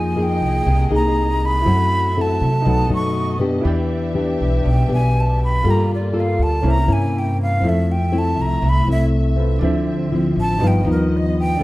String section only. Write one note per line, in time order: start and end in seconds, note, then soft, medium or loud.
0.00 1.63 A#3 medium
0.00 1.64 G#4 medium
0.00 1.64 D#5 medium
1.67 2.65 A3 medium
1.67 2.65 F#4 medium
1.67 2.65 E5 medium
2.65 3.64 B3 medium
2.65 3.64 A4 medium
2.65 3.64 D#5 medium
3.64 5.61 D4 medium
3.64 5.62 G4 medium
3.64 5.62 E5 medium
5.64 6.63 A#3 medium
5.64 6.63 F4 medium
6.63 7.62 A#3 medium
6.63 7.62 E4 medium
7.62 9.59 A3 medium
7.62 10.57 E5 medium
9.62 10.60 C4 medium
10.61 11.59 B3 medium
10.61 11.59 D#5 medium
11.59 11.63 A3 medium
11.59 11.63 E4 medium
11.59 11.63 D5 medium